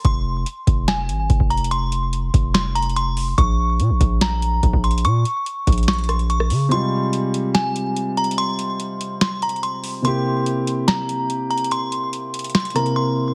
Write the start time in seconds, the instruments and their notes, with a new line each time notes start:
0.05 808-style bass F1, synth bell C6, kick, closed hi-hat
0.46 closed hi-hat
0.67 808-style bass F1, kick, closed hi-hat
0.88 synth bell G#5, snare, closed hi-hat
1.09 808-style bass G#1, closed hi-hat
1.30 808-style bass F1, kick, closed hi-hat
1.40 808-style bass F1, kick
1.50 synth bell A#5, closed hi-hat
1.57 closed hi-hat
1.64 closed hi-hat
1.71 synth bell C6, closed hi-hat
1.92 closed hi-hat
2.13 closed hi-hat
2.34 808-style bass F1, kick, closed hi-hat
2.54 synth bell C6, snare, closed hi-hat
2.75 synth bell A#5, closed hi-hat
2.82 closed hi-hat
2.89 closed hi-hat
2.96 synth bell C6, closed hi-hat
3.17 open hi-hat
3.38 808-style bass A#1, synth bell C#6, kick, closed hi-hat
3.80 808-style bass A#2, closed hi-hat
3.90 808-style bass A#1
4.01 808-style bass A#1, kick, closed hi-hat
4.21 synth bell A#5, snare, closed hi-hat
4.42 closed hi-hat
4.63 808-style bass A#1, kick, closed hi-hat
4.73 808-style bass A#1, kick
4.84 synth bell C6, closed hi-hat
4.91 closed hi-hat
4.98 closed hi-hat
5.05 808-style bass A#2, synth bell C#6, closed hi-hat
5.25 closed hi-hat
5.46 closed hi-hat
5.67 808-style bass A#1, kick, closed hi-hat
5.72 closed hi-hat
5.78 closed hi-hat
5.83 closed hi-hat
5.88 synth bell C#6, snare, closed hi-hat
5.93 closed hi-hat
5.98 closed hi-hat
6.04 closed hi-hat
6.09 synth bell C6, cross-stick, closed hi-hat
6.19 closed hi-hat
6.30 synth bell C#6, closed hi-hat
6.40 cross-stick
6.50 808-style bass C#3, open hi-hat
6.69 grand piano C3 G#3 F4, synth bell C6, closed hi-hat
6.74 grand piano G3
7.13 closed hi-hat
7.34 closed hi-hat
7.54 synth bell G#5, snare, closed hi-hat
7.76 closed hi-hat
7.96 closed hi-hat
8.17 synth bell A#5, closed hi-hat
8.24 closed hi-hat
8.31 closed hi-hat
8.38 synth bell C6, closed hi-hat
8.59 closed hi-hat
8.80 closed hi-hat
9.01 closed hi-hat
9.21 synth bell C6, snare, closed hi-hat
9.42 synth bell A#5, closed hi-hat
9.49 closed hi-hat
9.56 closed hi-hat
9.63 synth bell C6, closed hi-hat
9.84 open hi-hat
10.02 grand piano C3 A#3 E4, synth bell C6, closed hi-hat
10.07 grand piano G4
10.46 closed hi-hat
10.67 closed hi-hat
10.88 synth bell A#5, snare, closed hi-hat
11.09 closed hi-hat
11.30 closed hi-hat
11.50 synth bell A#5, closed hi-hat
11.57 closed hi-hat
11.64 closed hi-hat
11.71 synth bell C6, closed hi-hat
11.92 closed hi-hat
12.13 closed hi-hat
12.34 closed hi-hat
12.39 closed hi-hat
12.44 closed hi-hat
12.50 closed hi-hat
12.55 synth bell C6, snare, closed hi-hat
12.60 closed hi-hat
12.65 closed hi-hat
12.70 grand piano C3, closed hi-hat
12.75 grand piano A#3 E4 A#4, synth bell A#5, cross-stick, closed hi-hat
12.86 closed hi-hat
12.96 synth bell C6